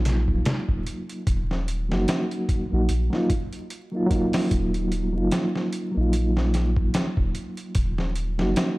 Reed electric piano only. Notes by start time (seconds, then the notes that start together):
Already playing: F#3 A#3 D#4 F4
1.89 F#3 A#3 D#4
1.93 F#4
2.70 F#3 A#3 D#4
2.74 F#4
3.10 F#3 A#3 D#4
3.15 F4
3.92 F#3 A#3 D#4
3.96 F4
4.06 F#3 A#3
4.12 D#4 F4
5.13 F#3 A#3 D#4
5.17 F4
5.92 F#3 A#3
5.98 D#4 F4
8.38 F#3 A#3 D#4
8.42 F#4